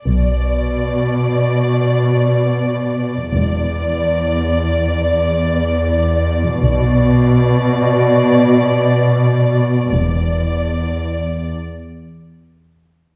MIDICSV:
0, 0, Header, 1, 4, 480
1, 0, Start_track
1, 0, Key_signature, 2, "minor"
1, 0, Tempo, 500000
1, 12633, End_track
2, 0, Start_track
2, 0, Title_t, "Violin section"
2, 0, Program_c, 0, 48
2, 39, Note_on_c, 0, 74, 30
2, 3162, Note_off_c, 0, 74, 0
2, 3211, Note_on_c, 0, 74, 39
2, 6325, Note_off_c, 0, 74, 0
2, 6363, Note_on_c, 0, 74, 43
2, 9479, Note_off_c, 0, 74, 0
2, 9520, Note_on_c, 0, 74, 25
2, 11058, Note_off_c, 0, 74, 0
2, 12633, End_track
3, 0, Start_track
3, 0, Title_t, "Cello section"
3, 0, Program_c, 1, 48
3, 53, Note_on_c, 1, 47, 29
3, 3168, Note_off_c, 1, 47, 0
3, 3213, Note_on_c, 1, 40, 42
3, 6326, Note_off_c, 1, 40, 0
3, 6373, Note_on_c, 1, 47, 48
3, 9523, Note_off_c, 1, 47, 0
3, 9528, Note_on_c, 1, 40, 34
3, 11100, Note_off_c, 1, 40, 0
3, 12633, End_track
4, 0, Start_track
4, 0, Title_t, "Double bass section"
4, 0, Program_c, 2, 48
4, 45, Note_on_c, 2, 35, 28
4, 797, Note_off_c, 2, 35, 0
4, 3210, Note_on_c, 2, 28, 35
4, 3958, Note_off_c, 2, 28, 0
4, 6366, Note_on_c, 2, 35, 43
4, 7114, Note_off_c, 2, 35, 0
4, 9530, Note_on_c, 2, 28, 25
4, 10274, Note_off_c, 2, 28, 0
4, 12633, End_track
0, 0, End_of_file